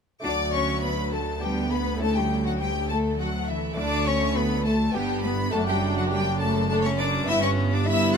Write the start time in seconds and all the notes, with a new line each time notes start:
0.20 D2 A3 D4 F#4 D6
0.24 D2 F#3 D4 D5
0.53 C#4 C#5 C#6
0.83 B3 B4 B5
1.12 A3 A4 A5
1.38 B3 D4 G4
1.42 G3 B3 G5
1.72 B3 B4 B5
1.96 A3 C#4 E4 A4
2.01 A3 A5
2.16 G3 G4 G5
2.45 F#3 F#4 F#5
2.59 G3 A3 G4 G5
2.89 A3 A4 A5
3.19 F#3 F#4 F#5
3.48 E3 E4 E5
3.73 A3 D4 F#4 D6
3.77 D2 A3 D4 D5
4.06 C#4 C#5 C#6
4.36 B3 B4 B5
4.66 A3 A4 A5
4.92 G1 G2 B3 D4 G4 G5
4.96 G2 G3 B3
5.24 B3 B4 B5
5.50 F#1 A3 D4 F#4 A4 A5
5.54 F#2 A3 D4
5.68 G3 G4 G5
5.96 F#3 F#4 F#5
6.10 G3 G4 G5
6.40 A3 A4 A5
6.70 A3 D4 A4 A5
6.84 C#4 C#5 C#6
6.99 C#4 D4 D5 D6
7.24 B3 E4
7.28 G1 G2 B3 E4 E5 E6
7.42 C#4 C#5 C#6
7.71 D4 D5 D6
7.86 B3 E4 E5 E6